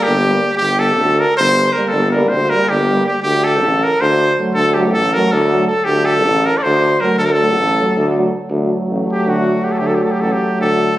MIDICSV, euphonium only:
0, 0, Header, 1, 2, 480
1, 0, Start_track
1, 0, Tempo, 376412
1, 769, Time_signature, 7, 3, 24, 8
1, 14009, End_track
2, 0, Start_track
2, 0, Title_t, "Euphonium"
2, 0, Program_c, 0, 58
2, 334, Note_on_c, 0, 55, 66
2, 508, Note_off_c, 0, 55, 0
2, 2248, Note_on_c, 0, 55, 56
2, 2440, Note_off_c, 0, 55, 0
2, 2734, Note_on_c, 0, 55, 65
2, 2930, Note_off_c, 0, 55, 0
2, 3236, Note_on_c, 0, 55, 65
2, 3422, Note_off_c, 0, 55, 0
2, 3712, Note_on_c, 0, 55, 60
2, 3881, Note_off_c, 0, 55, 0
2, 5590, Note_on_c, 0, 54, 64
2, 5786, Note_off_c, 0, 54, 0
2, 6063, Note_on_c, 0, 54, 71
2, 6265, Note_off_c, 0, 54, 0
2, 6582, Note_on_c, 0, 54, 81
2, 6770, Note_off_c, 0, 54, 0
2, 7052, Note_on_c, 0, 54, 76
2, 7224, Note_off_c, 0, 54, 0
2, 8947, Note_on_c, 0, 54, 69
2, 9143, Note_off_c, 0, 54, 0
2, 9437, Note_on_c, 0, 54, 59
2, 9636, Note_off_c, 0, 54, 0
2, 9944, Note_on_c, 0, 54, 60
2, 10132, Note_off_c, 0, 54, 0
2, 10409, Note_on_c, 0, 54, 60
2, 10583, Note_off_c, 0, 54, 0
2, 10828, Note_on_c, 0, 54, 61
2, 14009, Note_off_c, 0, 54, 0
2, 14009, End_track
0, 0, End_of_file